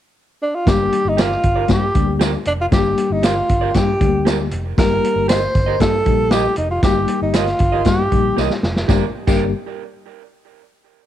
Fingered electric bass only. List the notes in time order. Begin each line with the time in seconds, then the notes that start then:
0.67 G1
1.05 G1
1.44 G1
1.69 G2
1.95 D2
2.46 F1
2.72 G1
3.10 G1
3.49 G1
3.75 G2
4.01 D2
4.52 F1
4.78 G1
5.16 G1
5.55 G1
5.81 G2
6.06 A#1
6.58 F1
6.83 G1
7.22 G1
7.60 G1
7.86 G2
8.12 A#1
8.37 C2
8.63 F1
8.89 G1
9.28 G1